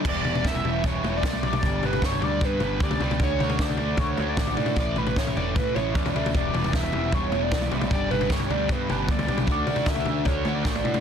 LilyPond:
<<
  \new Staff \with { instrumentName = "Analog synth lead" } { \time 4/4 \key e \dorian \tempo 4 = 153 d''4 e''4 cis''8. d''4~ d''16 | d''8 b'8 cis''8 d''8 b'8 b'8 d''8. r16 | cis''4 d''4 cis''8. d''4~ d''16 | d''8 b'8 cis''8 d''8 b'8 cis''8 d''8. r16 |
d''4 e''4 cis''8. d''4~ d''16 | d''8 b'8 cis''8 d''8 b'8 b'8 d''8. r16 | d''4 e''4 cis''8. d''4~ d''16 | }
  \new Staff \with { instrumentName = "Distorted electric guitar" } { \time 4/4 \key e \dorian <e, b, e g b e'>8 <e, b, e g b e'>8 <e, b, e g b e'>8 <e, b, e g b e'>8 <e, b, e g b e'>8 <e, b, e g b e'>8 <e, b, e g b e'>8 <e, b, e g b e'>8 | <g, d g b d' g'>8 <g, d g b d' g'>8 <g, d g b d' g'>8 <g, d g b d' g'>8 <g, d g b d' g'>8 <g, d g b d' g'>8 <g, d g b d' g'>8 <g, d g b d' g'>8 | <d a d' fis'>8 <d a d' fis'>8 <d a d' fis'>8 <d a d' fis'>8 <d a d' fis'>8 <d a d' fis'>8 <d a d' fis'>8 <d a d' fis'>8 | <a, e a cis' e'>8 <a, e a cis' e'>8 <a, e a cis' e'>8 <a, e a cis' e'>8 <a, e a cis' e'>8 <a, e a cis' e'>8 <a, e a cis' e'>8 <a, e a cis' e'>8 |
<e, b, e g b e'>8 <e, b, e g b e'>8 <e, b, e g b e'>8 <e, b, e g b e'>8 <e, b, e g b e'>8 <e, b, e g b e'>8 <e, b, e g b e'>8 <e, b, e g b e'>8 | <g, d g b d' g'>8 <g, d g b d' g'>8 <g, d g b d' g'>8 <g, d g b d' g'>8 <g, d g b d' g'>8 <g, d g b d' g'>8 <g, d g b d' g'>8 <g, d g b d' g'>8 | <d a d' fis'>8 <d a d' fis'>8 <d a d' fis'>8 <d a d' fis'>8 <d a d' fis'>8 <d a d' fis'>8 <d a d' fis'>8 <d a d' fis'>8 | }
  \new Staff \with { instrumentName = "Picked electric bass" } { \clef bass \time 4/4 \key e \dorian e,,8 e,,8 e,,8 e,,8 r8 e,,8 b,,8 b,,8 | g,,4 g,,8 d,8 g,8 g,,8 d,8 cis,8 | d,8 d,8 d,8 d,8 d,8 d,8 a,,8 a,8 | a,,4 a,,8 e,,8 a,8 a,,8 e,8 d,8 |
e,,8 e,,8 e,,8 e,,8 e,,8 e,,8 b,,8 b,,8 | g,,4 g,,8 d,8 g,8 g,,8 d,8 b,,8 | d,8 d,8 d,8 d,8 d,8 d,8 a,,8 a,8 | }
  \new DrumStaff \with { instrumentName = "Drums" } \drummode { \time 4/4 <cymc bd tomfh>8 tomfh16 tomfh16 <bd sn toml>16 tomfh16 tomfh8 <bd tomfh>8 toml8 <bd sn>16 toml16 tomfh16 <tomfh toml>16 | <bd tomfh>8 tomfh16 tomfh16 <bd sn>16 tomfh16 tomfh8 <bd tomfh>8 <tomfh toml>8 bd16 <tomfh toml>16 tomfh16 <tomfh toml>16 | <bd tomfh>8 tomfh16 tomfh16 <bd sn toml>16 tomfh16 tomfh8 <bd tomfh>8 toml8 <bd sn>16 toml16 tomfh16 <tomfh toml>16 | <bd tomfh>8 tomfh16 tomfh16 <bd sn>16 tomfh16 tomfh8 <bd tomfh>8 <tomfh toml>8 bd16 <tomfh toml>16 tomfh16 <tomfh toml>16 |
<bd tomfh>8 tomfh16 tomfh16 <bd sn toml>16 tomfh16 tomfh8 <bd tomfh>8 toml8 <bd sn>16 toml16 tomfh16 <tomfh toml>16 | <bd tomfh>8 tomfh16 tomfh16 <bd sn>16 tomfh16 tomfh8 <bd tomfh>8 <tomfh toml>8 bd16 <tomfh toml>16 tomfh16 <tomfh toml>16 | <bd tomfh>8 tomfh16 tomfh16 <bd sn toml>16 tomfh16 tomfh8 <bd tomfh>8 toml8 <bd sn>16 toml16 tomfh16 <tomfh toml>16 | }
>>